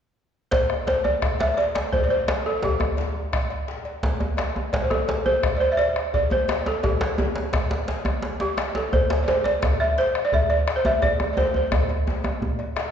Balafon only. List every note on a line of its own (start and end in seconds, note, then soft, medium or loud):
0.51 0.86 C5 medium
0.87 1.06 C5 medium
1.04 1.37 D5 medium
1.40 1.58 E5 medium
1.57 1.94 D5 medium
1.93 1.97 C5 medium
2.04 2.11 D5 medium
2.10 2.43 C5 medium
2.46 2.55 A4 medium
2.57 2.63 A4 medium
2.64 3.30 G4 medium
4.84 4.91 C5 medium
4.90 5.27 A4 medium
5.26 5.57 C5 medium
5.57 5.65 C5 medium
5.57 5.61 D5 medium
5.72 5.79 E5 medium
5.77 6.13 D5 medium
6.14 6.32 D5 medium
6.32 6.68 C5 medium
6.68 6.75 A4 medium
6.84 7.50 G4 medium
8.41 8.77 G4 medium
8.76 8.84 A4 medium
8.93 9.21 C5 medium
9.24 9.28 D5 medium
9.28 9.46 C5 medium
9.44 9.81 D5 medium
9.80 9.98 E5 medium
9.98 10.25 C5 medium
10.25 10.33 D5 medium
10.34 10.49 E5 medium
10.50 10.77 D5 medium
10.76 10.85 C5 medium
10.86 11.02 E5 loud
11.03 11.32 D5 medium
11.33 11.37 D5 medium
11.38 11.54 C5 medium
11.56 12.56 C5 medium